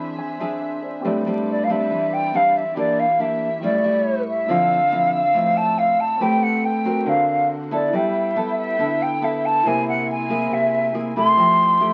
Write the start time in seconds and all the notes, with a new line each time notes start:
Already playing: E3 C4 D4 G#4 C5 E5 B5
0.18 G#5
0.40 C4 D4 G#4 E5
0.61 E5
0.81 D4 G#4 C5 E5
1.01 C4 G4 A4 B4 D5
1.05 A2 G3 C4 D4 A4 B4 D5
1.26 G3 C4 D4
1.51 D5
1.64 F5
1.69 G3 C4 D4 E5
1.91 E3
2.13 G5
2.34 G3 C4 D4 F5
2.57 E5
2.73 E3 A#3 D4 G4 A#4 E5
2.79 D5 E5
2.99 F5
3.19 A#3 D4 G4 E5
3.59 A2 G3 A3 C#4 E4 G4 C#6
3.63 E4 A4 D5 E5
3.84 G3 E4
4.29 E5
4.46 D3 F3 C4 D4 E4 F4 D5 E6
4.50 C5 F5 E6
4.92 F3 C4 E4
5.15 F5
5.34 A2 F3 C4 E4
5.57 A5
5.78 F5
6.00 A5
6.17 A3 C4 G4 A4 B4 G5
6.21 B4 G5
6.43 F#5
6.65 G5
6.85 C4 F#4 A#4
7.04 D3 D4 F#4 A#4 C5
7.08 F#4 C5 F5
7.71 B3 E4 A4 D5
7.89 G3 E4 A4 B4 G5
7.93 B4 E5 G5
8.36 B3 E4 A4
8.58 E5
8.78 D3 B3 E4 A4
9.02 G5
9.22 B3 E4 A4 E5
9.46 A5
9.62 C3 A#3 E4 A#4 C5 G#5
9.66 G#4 G#5
9.89 F#5
10.11 G#5
10.29 A#3 E4 G#4
10.51 C3 E5
10.94 A#3 E4 G#4
11.16 A3 E4 G4 C6
11.36 F3 A4 E5 G5
11.80 A3 E4 G4